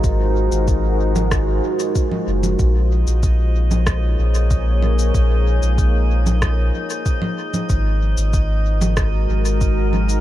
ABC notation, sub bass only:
X:1
M:4/4
L:1/16
Q:1/4=94
K:Bbm
V:1 name="Sub bass" clef=bass
A,,,3 A,,,6- A,,, z4 G,,,2 | B,,,3 B,,,6- B,,, B,,,6 | B,,,3 B,,,6- B,,, z6 | A,,,3 A,,,6- A,,, A,,,6 |]